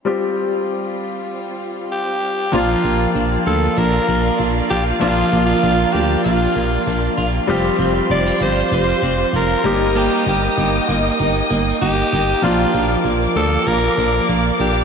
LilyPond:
<<
  \new Staff \with { instrumentName = "String section" } { \time 4/4 \key bes \major \tempo 4 = 97 << { <g c' f'>1 | <bes d'' f''>1~ | <bes d'' f''>1 | <c'' f'' c'''>2.~ <c'' f'' c'''>8 <ees'' g'' ees'''>8~ |
<ees'' g'' ees'''>1 | <d'' f'' d'''>1 | } \\ { r1 | f'1~ | f'1 | g'2.~ g'8 bes8~ |
bes1~ | bes1 | } >> }
  \new Staff \with { instrumentName = "Alto saxophone" } { \time 4/4 \key bes \major r2. g'4 | f'4 r8 a'8 bes'4 r8 g'8 | f'8. f'8. g'8 f'4. r8 | r4 d''8 c''8 c''4 bes'4 |
g'8 g'4. r4 g'4 | f'4 r8 a'8 bes'4 r8 g'8 | }
  \new Staff \with { instrumentName = "Grand piano" } { \time 4/4 \key bes \major <g c' f' g'>1 | <f bes d' f'>1 | <f bes d' f'>1 | <g c' f' g'>2.~ <g c' f' g'>8 <g bes ees' g'>8~ |
<g bes ees' g'>2.~ <g bes ees' g'>8 r8 | <f bes d' f'>1 | }
  \new Staff \with { instrumentName = "Clean electric guitar" } { \time 4/4 \key bes \major r1 | <f f'>8 bes8 d'8 bes8 d'8 bes8 d'8 f'8 | <f f'>8 bes8 d'8 bes8 d'8 bes8 d'8 f'8 | <f g'>8 c'8 ees'16 f'16 c'8 f'8 c'8 f'8 bes8 |
<bes g'>8 bes8 ees'8 bes8 ees'8 bes8 ees'8 g'8 | <f d'>8 f8 bes8 f8 bes8 f8 bes8 d'8 | }
  \new Staff \with { instrumentName = "FM bass" } { \clef bass \time 4/4 \key bes \major r1 | bes,,8 bes,,8 bes,,8 d,8 bes,,8 bes,,8 bes,,8 bes,,8 | bes,,8 bes,,8 bes,,8 d,8 bes,,8 bes,,8 bes,,8 bes,,8 | f,,8 f,,8 f,,8 g,,8 f,,8 f,,8 f,,8 g,,8~ |
g,,8 g,,8 g,,8 g,,8 g,,8 g,,8 g,,8 g,,8 | bes,,8 bes,,8 bes,,8 d,8 bes,,8 bes,,8 bes,,8 bes,,8 | }
>>